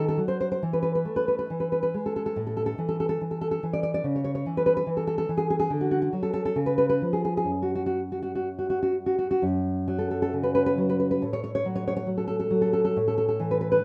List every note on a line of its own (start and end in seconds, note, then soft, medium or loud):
0.00 0.18 D#3 medium
0.08 0.19 A4 medium
0.17 0.58 F#3 soft
0.28 0.39 C5 medium
0.41 0.50 C5 medium
0.52 0.63 C5 medium
0.62 1.05 E3 soft
0.73 0.81 B4 medium
0.83 0.94 B4 medium
0.95 1.07 B4 medium
1.05 1.46 A3 soft
1.16 1.27 B4 medium
1.28 1.38 B4 medium
1.39 1.50 B4 medium
1.50 1.93 E3 soft
1.60 1.71 B4 soft
1.72 1.82 B4 medium
1.83 1.94 B4 medium
1.94 2.33 G#3 soft
2.06 2.15 A4 medium
2.16 2.25 A4 medium
2.26 2.37 A4 medium
2.36 2.78 A2 soft
2.47 2.56 A4 soft
2.57 2.65 A4 medium
2.66 2.78 A4 medium
2.78 3.20 E3 soft
2.89 2.99 A4 medium
3.00 3.08 A4 medium
3.09 3.21 A4 medium
3.21 3.62 E3 soft
3.31 3.40 A4 medium
3.41 3.50 A4 medium
3.51 3.62 A4 medium
3.63 4.00 E3 soft
3.73 3.82 D5 medium
3.83 3.93 D5 medium
3.94 4.04 D5 medium
4.04 4.44 C#3 soft
4.16 4.23 C#5 soft
4.24 4.34 C#5 medium
4.35 4.46 C#5 medium
4.46 4.85 E3 soft
4.57 4.65 B4 medium
4.66 4.76 B4 medium
4.77 4.88 B4 medium
4.87 5.28 E3 soft
4.97 5.06 A4 medium
5.07 5.17 A4 medium
5.18 5.29 A4 medium
5.29 5.67 E3 soft
5.37 5.49 G#4 medium
5.50 5.58 G#4 medium
5.60 5.71 G#4 medium
5.70 6.12 D3 medium
5.81 5.90 F#4 medium
5.91 6.01 F#4 medium
6.02 6.13 F#4 medium
6.13 6.52 F#3 soft
6.23 6.32 A4 medium
6.34 6.44 A4 medium
6.45 6.56 A4 medium
6.56 7.00 C#3 medium
6.66 6.77 B4 medium
6.78 6.88 B4 medium
6.89 7.01 B4 medium
7.02 7.46 F3 soft
7.13 7.23 G#4 medium
7.25 7.36 G#4 medium
7.37 7.50 G#4 medium
7.44 9.34 F#2 soft
7.62 7.74 F#4 medium
7.75 7.85 F#4 soft
7.86 7.99 F#4 medium
8.12 8.21 F#4 soft
8.22 8.34 F#4 medium
8.35 8.47 F#4 medium
8.59 8.69 F#4 soft
8.70 8.81 F#4 medium
8.83 8.94 F#4 medium
9.06 9.17 F#4 soft
9.19 9.29 F#4 medium
9.31 9.42 F#4 medium
9.42 11.19 F#2 medium
9.88 10.77 F#3 soft
9.99 10.10 A4 medium
10.11 10.21 A4 medium
10.22 10.33 A4 medium
10.33 11.23 C#3 soft
10.43 10.54 B4 medium
10.55 10.65 B4 medium
10.66 10.78 B4 medium
10.78 11.22 F#3 soft
10.90 10.99 B4 medium
11.00 11.10 B4 medium
11.11 11.22 B4 medium
11.22 12.93 A2 medium
11.33 11.42 C#5 medium
11.44 11.54 C#5 medium
11.55 11.66 C#5 medium
11.65 12.05 F#3 soft
11.75 11.86 C#5 medium
11.88 11.95 C#5 medium
11.97 12.09 C#5 medium
12.07 12.49 F#3 soft
12.18 12.26 A4 medium
12.28 12.38 A4 medium
12.40 12.52 A4 medium
12.50 12.96 F#3 soft
12.61 12.72 A4 medium
12.73 12.83 A4 medium
12.85 12.96 A4 medium
12.96 13.85 A2 medium
13.08 13.17 A4 medium
13.18 13.27 A4 medium
13.28 13.40 A4 medium
13.40 13.83 E3 medium
13.51 13.60 B4 medium
13.61 13.70 B4 medium
13.72 13.83 B4 medium